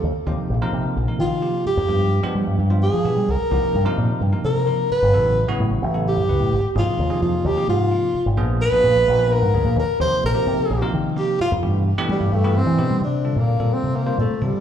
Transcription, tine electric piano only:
0.27 C3 F3 A#3 D#4 G4
0.62 C3 F3 A#3 D#4 A#4
1.08 C3 F3 A#3 D#4 A#4
1.42 C3 F3 A#3 D#4 G4
1.88 F3 G#3 B3 D4 G4
2.23 F3 G#3 B3 D4 G4
2.70 F3 G#3 B3 D4 F4
3.05 F3 G#3 B3 D4 G4
3.51 C3 F3 A#3 D#4 G4
3.85 C3 F3 A#3 D#4 A#4
4.32 C3 F3 A#3 D#4 A#4
4.67 C3 F3 A#3 D#4 A#4
5.13 C#3 F#3 B3 E4 A4
5.48 C#3 F#3 B3 E4 F#4
5.94 C#3 F#3 B3 E4 A4
6.29 C#3 F#3 B3 E4 B4
6.75 C3 F3 A#3 D#4 G#4
7.10 C3 F3 A#3 D#4 G#4
7.57 C3 F3 A#3 D#4 G#4
7.91 C3 F3 A#3 D#4 F4
8.37 F3 A#3 B3 D4 G#4
8.72 F3 A#3 B3 D4 G#4
9.18 F3 A#3 B3 D4 B4
9.54 F3 A#3 B3 D4 G#4
10.00 C3 F3 A#3 D#4 G4
10.34 C3 F3 A#3 D#4 G4
10.82 C3 F3 A#3 D#4 A#4
11.16 C3 F3 A#3 D#4 G4
11.63 B2 E3 A3 D4 G4
11.98 B2 E3 A3 D4 G4
12.44 B2 E3 A3 D4 G4
12.78 B2 E3 A3 D4 G4
13.25 D3 G3 C4 F4 A4
13.60 D3 G3 C4 F4 A4
14.06 D3 G3 C4 F4 C5
14.42 D3 G3 C4 F4 A4

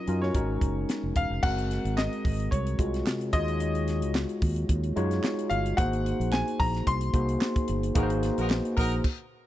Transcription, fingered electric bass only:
0.08 F#2
0.35 G#1
0.62 F#1
1.03 F1
1.16 E1
1.30 F1
1.43 F#1
1.85 G#1
2.25 G#1
2.52 C2
2.79 C2
3.33 D#2
4.03 C#2
4.42 D#2
4.69 D#2
4.97 F#2
5.51 G1
5.78 G#1
6.20 A#1
6.60 A#1
6.87 C2
7.14 C2
7.69 G1
7.96 G#1
8.38 A#1
8.78 A#1

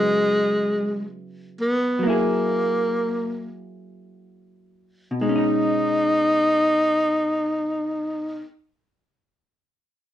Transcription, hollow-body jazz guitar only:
Already playing: C#3 F#3 B3 E4
1.99 F#3 A#3
2.07 E4 G#4
5.11 B2
5.21 G#3
5.29 C#4
5.36 D#4

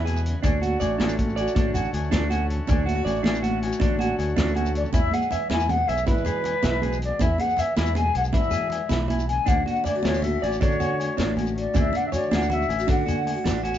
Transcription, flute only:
4.77 D5
4.96 E5
5.14 F#5
5.32 E5
5.51 G#5
5.70 F#5
5.88 E5
6.08 B4
7.04 D5
7.22 E5
7.40 F#5
7.60 E5
7.78 E5
7.97 G#5
8.17 F#5
8.33 E5
9.29 G#5
9.48 F#5
9.68 F#5
9.86 D5
10.05 C#5
10.23 E5
10.43 D5
10.60 C#5
11.59 D5
11.78 E5
11.96 F#5
12.06 E5
12.15 D5
12.34 F#5
12.53 E5
12.91 F#5

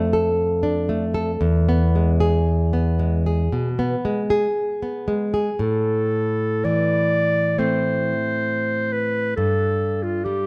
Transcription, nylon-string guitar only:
Already playing: F2 A3
0.13 A4
0.63 D4
0.89 A3
1.14 A4
1.41 E2
1.69 B3
1.95 G#3
2.20 G#4
2.73 B3
2.99 G#3
3.26 G#4
3.52 B2
3.79 B3
4.05 G#3
4.30 G#4
4.83 B3
5.08 G#3
5.34 G#4
5.59 A2
6.65 E3
7.58 A3 C4
9.38 G2
10.26 G3

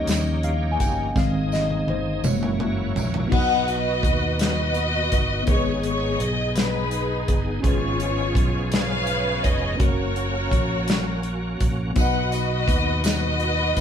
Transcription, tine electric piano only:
Already playing: F3 G3 C#4 D#5
0.44 F5
0.72 G#5
0.81 G5
1.15 D#3 G#3 C4 F5
1.53 D#5
1.90 C5
2.23 E3 G#3 A#3 C#5
3.27 B2 B3 D#4
3.31 F#4 B4 D#5
5.43 B3 D#4
5.47 G#2 G#4 A#4 D#5
5.56 B4
7.61 G#2 C#4 F4 G#4
7.66 B4 C#5
9.76 A#3 C#4
9.80 F#4 A#4 C#5
11.93 B2 B3 D#4 F#4
11.99 B4 D#5

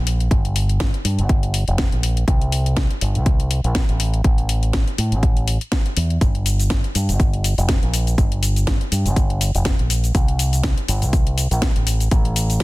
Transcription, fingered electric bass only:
Already playing: A#1
0.31 G1
1.05 G2
1.18 G1
1.68 F1
1.92 A#1
2.28 C2
3.02 G1
3.15 C2
3.64 A#1
3.89 A1
4.24 A1
4.98 A2
5.12 A1
5.97 E2
6.21 G1
6.95 G2
7.09 G1
7.58 F1
7.82 A#1
8.18 G1
8.92 G2
9.06 G1
9.55 F1
9.79 A#1
10.15 C2
10.89 G1
11.02 C2
11.51 A#1
11.76 A1
12.12 A1

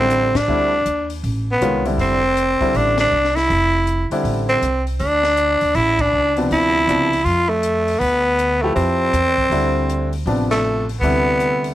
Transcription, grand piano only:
0.00 D3 G3 C4 E4
0.48 D3 G3 C4 E4
1.62 D#3 G#3 C#4 F4
1.85 D3 G3 C4 E4
2.61 D3 G3 C4 E4
4.12 D3 G3 C4 E4
6.37 C3 F3 B3 D4
6.88 C3 F3 B3 D4
8.63 F3 E4 G4 B4
9.51 D3 G3 C4 E4
10.27 C3 F3 B3 D4
11.03 C3 D3 G3 E4

